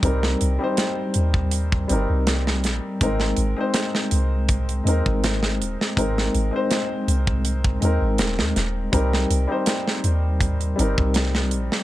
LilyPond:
<<
  \new Staff \with { instrumentName = "Upright piano" } { \time 4/4 \key c \minor \tempo 4 = 81 <g c' ees' bes'>8. <g c' ees' c''>4.~ <g c' ees' c''>16 <g c' ees' bes'>4. | <aes c' ees' bes'>8. <aes c' ees' c''>4.~ <aes c' ees' c''>16 <aes c' ees' bes'>4. | <aes c' ees' bes'>8. <aes c' ees' c''>4.~ <aes c' ees' c''>16 <aes c' ees' bes'>4. | <g c' ees' bes'>8. <g c' ees' c''>4.~ <g c' ees' c''>16 <g c' ees' bes'>4. | }
  \new Staff \with { instrumentName = "808-style bass" } { \clef bass \time 4/4 \key c \minor c,8 c,16 r8. ees,4 g,,16 c,8. bes,,16 r16 | aes,,8 aes,,16 r8. c,4 ees,16 aes,,8. ees,,16 r16 | aes,,8 aes,,16 r8. c,4 ees,16 aes,,16 ees,,16 ees,16 ees,,8 | c,8 c,16 r8. ees,4 g,,16 c,8. bes,,16 r16 | }
  \new DrumStaff \with { instrumentName = "Drums" } \drummode { \time 4/4 <hh bd>16 sn16 hh8 <hh sn>8 hh16 bd16 hh16 bd16 hh8 <hh sn>16 sn16 <hh sn>8 | <hh bd>16 sn16 hh8 <hh sn>16 sn16 hh8 <hh bd>16 hh16 hh16 bd16 <hh sn>16 sn16 hh16 sn16 | <hh bd>16 sn16 hh8 <hh sn>8 hh16 bd16 hh16 bd16 hh8 <hh sn>16 sn16 <hh sn>8 | <hh bd>16 sn16 hh8 <hh sn>16 sn16 hh8 <hh bd>16 hh16 hh16 bd16 <hh sn>16 sn16 hh16 sn16 | }
>>